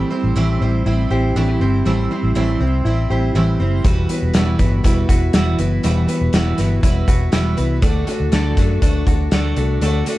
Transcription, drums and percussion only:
3.84 kick loud
3.84 closed hi-hat medium
4.09 closed hi-hat medium
4.34 snare loud
4.34 closed hi-hat medium
4.59 kick medium
4.59 closed hi-hat medium
4.84 kick medium
4.84 closed hi-hat medium
5.09 kick medium
5.09 closed hi-hat medium
5.33 snare loud
5.33 closed hi-hat medium
5.59 closed hi-hat medium
5.84 closed hi-hat medium
6.09 closed hi-hat medium
6.33 snare medium
6.33 closed hi-hat medium
6.58 snare soft
6.58 closed hi-hat medium
6.83 kick medium
6.83 closed hi-hat medium
7.08 kick medium
7.08 closed hi-hat medium
7.32 snare loud
7.32 closed hi-hat medium
7.58 closed hi-hat medium
7.82 kick loud
7.82 closed hi-hat medium
8.07 closed hi-hat medium
8.32 snare loud
8.32 closed hi-hat medium
8.57 kick medium
8.57 snare soft
8.57 closed hi-hat medium
8.82 kick medium
8.82 closed hi-hat medium
9.07 kick medium
9.07 closed hi-hat medium
9.31 snare loud
9.31 closed hi-hat medium
9.56 closed hi-hat medium
9.81 closed hi-hat medium
10.06 closed hi-hat medium

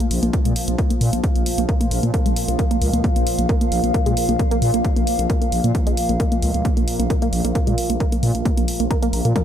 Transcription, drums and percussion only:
0.00 closed hi-hat medium
0.11 open hi-hat loud
0.23 closed hi-hat medium
0.33 kick loud
0.33 closed hi-hat medium
0.45 closed hi-hat medium
0.56 open hi-hat loud
0.68 closed hi-hat medium
0.78 kick loud
0.78 closed hi-hat medium
0.90 closed hi-hat medium
1.01 open hi-hat loud
1.13 closed hi-hat medium
1.24 kick loud
1.24 closed hi-hat medium
1.36 closed hi-hat medium
1.46 open hi-hat loud
1.58 closed hi-hat medium
1.69 kick loud
1.69 closed hi-hat medium
1.81 closed hi-hat medium
1.91 open hi-hat loud
2.03 closed hi-hat medium
2.14 kick loud
2.14 closed hi-hat medium
2.26 closed hi-hat medium
2.36 open hi-hat loud
2.48 closed hi-hat medium
2.59 kick loud
2.59 closed hi-hat medium
2.71 closed hi-hat medium
2.82 open hi-hat medium
2.93 closed hi-hat medium
3.04 kick loud
3.04 closed hi-hat medium
3.16 closed hi-hat medium
3.27 open hi-hat loud
3.39 closed hi-hat medium
3.49 kick loud
3.49 closed hi-hat medium
3.61 closed hi-hat medium
3.72 open hi-hat medium
3.84 closed hi-hat medium
3.94 kick loud
3.94 closed hi-hat medium
4.06 closed hi-hat medium
4.17 open hi-hat loud
4.29 closed hi-hat medium
4.39 kick loud
4.39 closed hi-hat medium
4.51 closed hi-hat medium
4.62 open hi-hat medium
4.74 closed hi-hat medium
4.85 kick loud
4.85 closed hi-hat medium
4.96 closed hi-hat medium
5.07 open hi-hat loud
5.19 closed hi-hat medium
5.30 kick loud
5.30 closed hi-hat medium
5.42 closed hi-hat medium
5.52 open hi-hat medium
5.64 closed hi-hat medium
5.75 kick loud
5.75 closed hi-hat medium
5.87 closed hi-hat medium
5.97 open hi-hat loud
6.09 closed hi-hat medium
6.20 kick loud
6.20 closed hi-hat medium
6.32 closed hi-hat medium
6.42 open hi-hat medium
6.54 closed hi-hat medium
6.65 kick loud
6.65 closed hi-hat medium
6.77 closed hi-hat medium
6.88 open hi-hat loud
7.00 closed hi-hat medium
7.10 kick loud
7.10 closed hi-hat medium
7.22 closed hi-hat medium
7.33 open hi-hat medium
7.45 closed hi-hat medium
7.55 kick loud
7.55 closed hi-hat medium
7.67 closed hi-hat medium
7.78 open hi-hat loud
7.90 closed hi-hat medium
8.00 kick loud
8.00 closed hi-hat medium
8.12 closed hi-hat medium
8.23 open hi-hat medium
8.35 closed hi-hat medium
8.45 kick loud
8.45 closed hi-hat medium
8.57 closed hi-hat medium
8.68 open hi-hat loud
8.80 closed hi-hat medium
8.91 kick loud
8.91 closed hi-hat medium
9.03 closed hi-hat medium
9.13 open hi-hat medium
9.25 closed hi-hat medium
9.36 kick loud
9.36 closed hi-hat medium
9.36 high tom medium

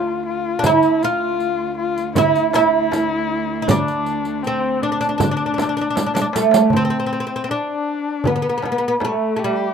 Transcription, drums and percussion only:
0.63 riq medium
0.63 darbuka dum medium
0.63 frame drum medium
0.83 riq soft
0.83 darbuka ka soft
1.01 riq soft
1.01 darbuka ka soft
1.21 darbuka ka soft
1.40 riq soft
1.98 riq soft
2.15 riq medium
2.15 darbuka dum medium
2.15 frame drum medium
2.35 riq soft
2.35 darbuka ka soft
2.53 riq soft
2.53 darbuka tek medium
2.53 frame drum medium
2.92 riq soft
2.92 darbuka tek medium
2.92 frame drum medium
3.68 riq medium
3.68 darbuka dum medium
3.68 frame drum medium
3.88 riq soft
4.06 riq soft
4.06 darbuka ka soft
4.25 riq soft
4.25 darbuka ka soft
4.44 riq soft
4.44 darbuka ka soft
5.02 riq soft
5.02 darbuka ka soft
5.20 riq medium
5.20 darbuka dum medium
5.20 frame drum medium
5.40 darbuka ka soft
5.58 riq soft
5.58 darbuka tek medium
5.58 frame drum medium
5.78 riq soft
5.96 riq medium
5.96 darbuka tek medium
5.96 frame drum medium
6.14 riq medium
6.14 darbuka ka medium
6.33 riq medium
6.33 darbuka tek medium
6.51 riq medium
6.51 darbuka ka medium
6.70 darbuka dum medium
6.70 frame drum medium
7.09 darbuka ka soft
7.48 darbuka ka soft
8.24 darbuka dum loud
8.24 frame drum medium
8.62 darbuka tek medium
8.62 frame drum medium
9.00 darbuka tek medium
9.00 frame drum medium

